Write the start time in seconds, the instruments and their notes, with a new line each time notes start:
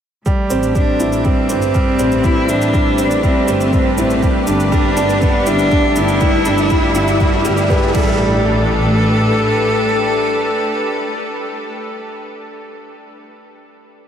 0.26 upright piano G3, string section A3, kick, riser, shaker
0.42 string section G4
0.50 double bass section A1, upright piano C4, shaker
0.58 string section D4
0.63 shaker
0.75 upright piano G3, cello D4, kick, shaker
1.00 double bass section A1, upright piano E4, string section B4, shaker
1.12 shaker
1.25 upright piano G3, cello C4, kick, shaker
1.49 double bass section G1, upright piano C4, shaker
1.62 shaker
1.74 upright piano G3, kick, shaker
1.99 double bass section A1, upright piano C4, shaker
2.12 shaker
2.24 upright piano G3, cello E4, kick, shaker
2.49 double bass section A1, cello D4, upright piano E4, shaker
2.61 shaker
2.73 upright piano G3, kick, shaker
2.98 double bass section A1, upright piano C4, shaker
3.11 shaker
3.23 upright piano G3, cello C4, kick, shaker
3.48 double bass section G1, upright piano C4, shaker
3.60 shaker
3.73 upright piano G3, kick, shaker
3.98 double bass section A1, upright piano E4, shaker
4.10 shaker
4.23 upright piano G3, kick, shaker
4.47 double bass section G1, upright piano D4, shaker
4.60 shaker
4.72 upright piano G3, cello D4, kick, shaker
4.97 double bass section G1, upright piano D4, shaker
5.09 shaker
5.22 upright piano G3, cello B3, kick, shaker
5.46 double bass section G1, cello D4, upright piano E4, shaker
5.59 shaker
5.71 upright piano G3, kick, shaker
5.96 double bass section G1, upright piano D4, cello E4, shaker
6.08 shaker
6.21 upright piano G3, kick, shaker
6.45 double bass section G1, upright piano D4, shaker
6.58 shaker
6.70 upright piano G3, kick, shaker
6.95 double bass section G1, upright piano E4, shaker
7.08 shaker
7.20 upright piano G3, kick, shaker
7.45 double bass section G1, upright piano G3, shaker
7.57 shaker
7.70 upright piano B4, kick, shaker
7.94 double bass section A1, upright piano G3, string section A3, cello A4, kick, crash
8.03 string section D4
8.35 string section G4
8.43 string section B4